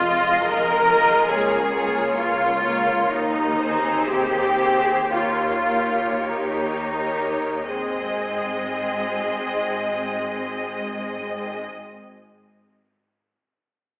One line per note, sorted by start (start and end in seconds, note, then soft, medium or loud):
0.00 0.34 F1 medium
0.00 0.33 F2 medium
0.00 0.87 G#3 medium
0.00 0.44 F4 medium
0.00 0.87 F4 medium
0.00 0.87 D#5 medium
0.44 1.22 F1 medium
0.44 1.21 F2 medium
0.44 1.31 A#4 loud
0.89 1.31 G#3 medium
0.89 1.30 F4 soft
0.89 1.31 D#5 medium
1.30 2.08 C#2 medium
1.30 1.73 A#3 soft
1.30 1.73 F4 medium
1.30 2.18 G#4 medium
1.30 1.71 C#5 medium
1.73 2.63 A#3 medium
1.73 2.63 F4 medium
1.73 2.62 C#5 soft
2.19 3.00 C#2 medium
2.19 3.01 C#2 medium
2.19 3.10 F4 medium
2.64 3.11 A#3 soft
2.64 3.11 F4 soft
2.64 3.11 C#5 medium
3.11 3.96 D#2 medium
3.11 3.97 D#2 medium
3.11 4.08 D#4 medium
3.58 4.56 C4 soft
3.58 4.56 G#4 medium
3.58 4.56 C5 soft
4.08 4.98 D#2 medium
4.08 5.10 G4 medium
4.57 5.09 C4 soft
4.57 5.09 G#4 soft
4.57 5.09 C5 soft
5.10 6.12 D#2 medium
5.10 5.64 A#3 soft
5.10 6.27 F4 medium
5.10 5.63 G4 soft
5.10 5.65 C#5 soft
5.65 6.96 A#3 soft
5.65 6.95 G4 soft
5.65 6.96 C#5 soft
6.27 7.53 D#2 medium
6.27 7.54 D#2 medium
6.27 7.69 D#4 medium
6.98 7.67 A#3 soft
6.98 7.67 G4 soft
6.98 7.68 C#5 soft
7.69 11.61 G#1 soft
7.69 11.60 G#2 soft
7.69 11.61 G#3 soft
7.69 11.60 C4 medium
7.69 11.60 G#4 soft
7.69 11.61 D#5 soft